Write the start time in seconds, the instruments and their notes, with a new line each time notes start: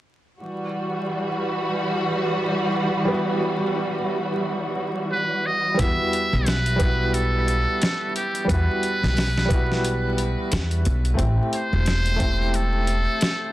0.40 string section E3 G3 F#4, synth texture B4
3.05 upright piano G3 B3
3.11 upright piano E4 F#4
5.12 muted trumpet B4
5.46 muted trumpet D#5
5.74 upright piano G3 B3
5.79 upright bass E2, upright piano E4, muted trumpet E5, kick, closed hi-hat
5.83 upright piano F#4
6.13 closed hi-hat
6.33 upright bass B1
6.46 muted trumpet B4, snare, closed hi-hat
6.66 closed hi-hat
6.76 upright piano G3 B3, closed hi-hat
6.80 upright piano E4, kick
6.85 upright piano F#4
7.14 muted trumpet A4, closed hi-hat
7.48 closed hi-hat
7.82 snare, closed hi-hat
8.16 muted trumpet G4, closed hi-hat
8.35 closed hi-hat
8.45 upright piano G3 B3
8.49 upright bass E2, upright piano E4, muted trumpet B4, kick, closed hi-hat
8.54 upright piano F#4
8.83 closed hi-hat
9.03 upright bass B1, snare
9.17 snare, open hi-hat
9.38 snare
9.45 upright piano G3 B3
9.50 upright piano E4, kick, closed hi-hat
9.55 upright piano F#4
9.72 snare
9.84 closed hi-hat
10.18 closed hi-hat
10.52 upright bass E2, snare, closed hi-hat
10.71 closed hi-hat
10.85 upright bass B1, closed hi-hat
11.05 closed hi-hat
11.14 upright piano A3 C4
11.19 upright bass A1, upright piano E4, kick, closed hi-hat
11.23 upright piano G4
11.53 muted trumpet C5, closed hi-hat
11.73 upright bass E1
11.86 snare, closed hi-hat
12.06 closed hi-hat
12.16 upright piano A3 C4
12.20 upright piano E4, kick, closed hi-hat
12.25 upright piano G4
12.54 muted trumpet A4, closed hi-hat
12.87 closed hi-hat
13.21 snare, closed hi-hat